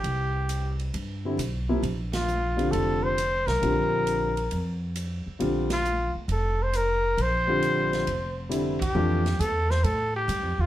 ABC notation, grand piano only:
X:1
M:4/4
L:1/8
Q:"Swing" 1/4=135
K:Bblyd
V:1 name="Grand piano"
z4 z [D,G,CE] z [C,F,B,E] | z3 [D,G,CF]3 z2 | [D,G,CF]3 z4 z | [D,G,CF] z6 z |
z [D,G,CF]3 z2 [D,G,CE] z | [K:F] [E,A,DF] z6 z |]